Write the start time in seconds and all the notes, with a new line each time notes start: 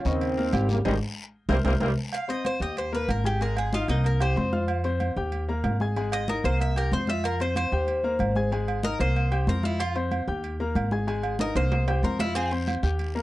0.05 D#2 C#3 D#3 C4 D#5 C#6, short guiro
0.21 high conga, low agogo, long guiro
0.37 A#3 A#4 A#5, high conga
0.53 G#1 G3 G4 G5, high conga, low agogo, short guiro
0.69 C#3 A#3, high conga, short guiro
0.85 G#1 D#3 G3 G#3 G#4 C5 D#5, high conga, high timbale, long guiro
1.49 C2 G3 A#3 C4 A#4 C5 E5, high conga, high timbale, long guiro
1.65 C2 G3 A#3 C4 A#4 C5 E5, high conga, high timbale, long guiro
1.80 C2 G3 A#3 C4 A#4 C5 E5, high conga, high timbale, long guiro
2.13 F5, high conga, low agogo
2.28 C4 C5 D#5 C6, high conga, low agogo
2.45 C5, high conga, low agogo
2.60 D#2 G4 D#5 G5 G6
2.77 C5, high conga, low agogo
2.92 A#3 A#4 B4 A#5, high conga
3.08 G#1 A#4, high conga, low agogo
3.24 G4 G#4 G#5 G#6, high conga
3.41 G#3 G#4 A#4 G#5, high conga, low agogo
3.57 G#4, high conga, low agogo
3.73 D#4 F4 D#5 D#6, high conga
3.88 C2 A#3 D#4 A#4 A#5, high conga, low agogo
4.04 A#4, high conga, low agogo
4.20 G4 C5 G5 G6, high conga, low agogo
4.36 F2 C4 C5 C6, high conga, low timbale
4.52 F4 F5 F6, high conga
4.68 high conga, low agogo
4.84 C4 C5 C6, high conga, low agogo
5.00 high conga, low agogo
5.16 D#2 G4 G5 G6
5.32 high conga, low agogo
5.49 A#3 A#4 A#5, high conga
5.64 G#1, high conga, low timbale, low agogo
5.80 G#4 G#5 G#6, high conga
5.96 G#3 G#4 G#5, high conga, low agogo
6.12 D#5, high conga, low agogo
6.28 D#4 A#4 D#5 D#6, high conga
6.44 C2 A#3 A#4 C5 A#5, high conga, low agogo
6.60 E5, high conga, low agogo
6.76 G4 A#4 G5 G6, high conga, low agogo
6.92 F2 C4 C5 C6, high conga, low timbale
7.07 F4 E5 F5 F6, high conga
7.24 A#4, high conga, low agogo
7.40 C4 C5 C6, high conga, low agogo
7.56 C5, high conga, low agogo
7.72 D#2 G4 G5 G6
7.87 high conga, low agogo
8.03 A#3 A#4 A#5, high conga
8.19 G#1, high conga, low agogo
8.36 G#4 G#5 G#6, high conga
8.51 G#3 G#4 G#5, high conga, low agogo
8.68 high conga, low agogo
8.83 D#4 A#4 D#5 D#6, high conga
8.99 C2 A#3 A#4 C5 A#5, high conga, low agogo
9.16 high conga, low agogo
9.31 G4 G5 G6, high conga, low agogo
9.47 F2 C4 A#4 C5 C6, high conga
9.63 E4 F4 F5 F6, high conga
9.79 F4, high conga, low agogo
9.95 C4 C5 C6, high conga, low agogo
10.11 high conga, low agogo
10.28 D#2 G4 G5 G6
10.44 high conga, low agogo
10.60 A#3 A#4 A#5, high conga
10.75 G#1, high conga, low agogo
10.91 G#4 G#5 G#6, high conga
11.07 G#3 G#4 G#5, high conga, low agogo
11.23 high conga, low agogo
11.39 D#4 A#4 D#5 D#6, high conga, high timbale
11.55 C2 A#3 A#4 C5 A#5, high conga, high timbale, low agogo
11.72 high conga, low timbale, low agogo
11.88 G4 G5 G6, high conga, low timbale, low agogo
12.03 F2 C4 A#4 C5 C6, high conga
12.19 E4 F4 F5 F6, high conga, low timbale
12.35 C4 G#4, high conga, low agogo, long guiro
12.51 C4 C5 C6, high conga, low agogo
12.67 high conga, low agogo, short guiro
12.83 D#2 G4 G5 G6, short guiro
12.99 high conga, low agogo, long guiro
13.15 A#3 A#4 A#5, high conga